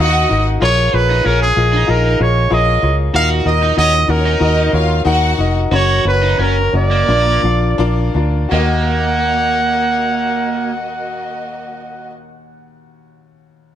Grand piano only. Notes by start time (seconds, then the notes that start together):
Already playing: A#2 D#4 F#4 D#5 F#5
0.00 A#4 F5
0.29 D#4 F#4 A#4 D#5
0.60 F4 G#4 A#4 C#5
0.93 F4 G#4 A#4 C#5
1.24 F4 G#4 A#4 C#5
1.56 F4 G#4 A#4 D#5
1.87 F4 G#4 A#4 D#5
2.19 F4 G#4 A#4 D#5
2.50 F4 G#4 A#4 C#5
2.82 F4 G#4 A#4 C#5
3.13 A#2 D#4 F#4 A#4 D#5
3.45 D#4 F#4 A#4 D#5
3.76 D#4 F#4 A#4 F#5
4.08 D#4 F#4 A#4 F#5
4.40 D#4 F#4 A#4 D#5
4.72 D#4 F#4 A#4 C#5
5.05 D#4 F#4 A#4 F#5
5.38 D#4 F#4 A#4 D#5
5.71 C#3 C#4 F#4 A#4 C#5
6.05 C#4 F#4 A#4 C#5
6.39 C#4 F#4 A#4 C#5
6.73 C#4 F#4 A#4 D#5
7.08 A#2 F3 D4 F4 A#4 D5
7.43 D4 F4 A#4 F5
7.78 D4 F4 A#4 D5
8.15 D4 F4 A#4 D5
8.49 D#2 F#4 A#4
8.55 D#5